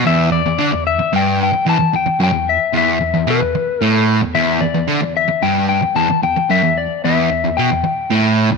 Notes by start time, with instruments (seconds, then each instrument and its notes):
0.05 distorted electric guitar E2, electric slide guitar E5
0.32 distorted electric guitar E2, electric slide guitar D5
0.46 distorted electric guitar E2
0.58 distorted electric guitar D3
0.71 distorted electric guitar E2
0.87 electric slide guitar E5
0.99 muted distorted electric guitar stroke
1.13 distorted electric guitar G2, electric slide guitar G5
1.43 electric slide guitar G5
1.53 muted distorted electric guitar stroke
1.66 distorted electric guitar E2, electric slide guitar A5
1.80 muted distorted electric guitar stroke
1.94 distorted electric guitar E2, electric slide guitar G5
2.06 muted distorted electric guitar stroke
2.20 distorted electric guitar F#2, electric slide guitar G5
2.32 distorted electric guitar E2
2.49 electric slide guitar E5
2.73 distorted electric guitar E2
2.78 electric slide guitar E5
3.00 distorted electric guitar E2
3.14 distorted electric guitar E2
3.27 distorted electric guitar B2, electric slide guitar B4
3.41 distorted electric guitar E2
3.55 muted distorted electric guitar stroke
3.81 distorted electric guitar A2, electric slide guitar A4
4.22 distorted electric guitar E2
4.34 distorted electric guitar E2, electric slide guitar E5
4.61 distorted electric guitar E2, electric slide guitar D5
4.75 distorted electric guitar E2
4.88 distorted electric guitar D3
5.02 distorted electric guitar E2
5.17 electric slide guitar E5
5.28 muted distorted electric guitar stroke
5.43 distorted electric guitar G2, electric slide guitar G5
5.69 electric slide guitar G5
5.82 muted distorted electric guitar stroke
5.96 distorted electric guitar E2, electric slide guitar A5
6.10 muted distorted electric guitar stroke
6.23 distorted electric guitar E2, electric slide guitar G5
6.36 muted distorted electric guitar stroke
6.50 distorted electric guitar F#2, electric slide guitar E5
6.63 distorted electric guitar E2
6.78 electric slide guitar D5
7.04 distorted electric guitar E2, electric slide guitar E5
7.31 distorted electric guitar E2
7.44 distorted electric guitar E2
7.57 distorted electric guitar B2, electric slide guitar G5
7.71 distorted electric guitar E2
7.84 muted distorted electric guitar stroke
8.11 distorted electric guitar A2
8.51 distorted electric guitar E2